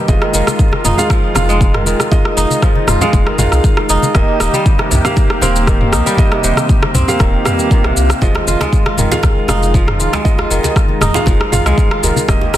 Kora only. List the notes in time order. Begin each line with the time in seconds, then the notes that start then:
Already playing: G2 D#3
0.22 D#3
0.34 D#3
0.85 D#4
1.10 F3
1.35 F4
1.49 G#3
1.74 D#3
1.86 D#3
2.37 D#4
2.62 F3
2.88 F4
3.02 G#3
3.27 D#3
3.39 D#3
3.89 D#4
4.15 D#3
4.40 D#4
4.54 G3
4.79 C3
4.91 C3
5.42 C4
5.67 D#3
5.93 D#4
6.06 G3
6.32 C3
6.44 C3
6.95 C4
7.20 D#3
7.45 G2
7.71 D#3
7.84 C3
8.22 F3
8.47 F4
8.61 G#3
8.86 F4
8.98 D#3
9.49 D#4
9.74 F3
10.00 F4
10.13 G#3
10.38 F4
10.50 D#3
11.01 D#4
11.27 F3
11.52 F4
11.66 G#3
11.91 F4
12.03 D#3
12.54 C4